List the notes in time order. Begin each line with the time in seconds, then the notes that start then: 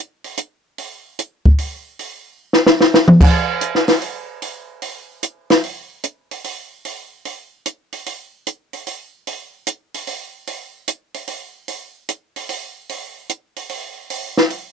0.24 open hi-hat
0.37 closed hi-hat
0.78 open hi-hat
1.19 closed hi-hat
1.46 kick
1.58 open hi-hat
1.99 open hi-hat
2.53 snare
2.66 snare
2.81 snare
2.94 snare
3.08 mid tom
3.21 kick, crash
3.61 closed hi-hat
3.75 snare
3.88 snare, open hi-hat
4.02 open hi-hat
4.42 open hi-hat
4.82 open hi-hat
5.23 closed hi-hat
5.50 snare, open hi-hat
5.64 open hi-hat
6.04 closed hi-hat
6.31 open hi-hat
6.44 open hi-hat
6.85 open hi-hat
7.25 open hi-hat
7.66 closed hi-hat
7.92 open hi-hat
8.06 open hi-hat
8.47 closed hi-hat
8.73 open hi-hat
8.87 open hi-hat
9.27 open hi-hat
9.67 closed hi-hat
9.94 open hi-hat
10.07 open hi-hat
10.47 open hi-hat
10.88 closed hi-hat
11.14 open hi-hat
11.27 open hi-hat
11.68 open hi-hat
12.09 closed hi-hat
12.36 open hi-hat
12.49 open hi-hat
12.89 open hi-hat
13.29 closed hi-hat
13.56 open hi-hat
13.69 open hi-hat
14.10 open hi-hat
14.37 snare
14.50 open hi-hat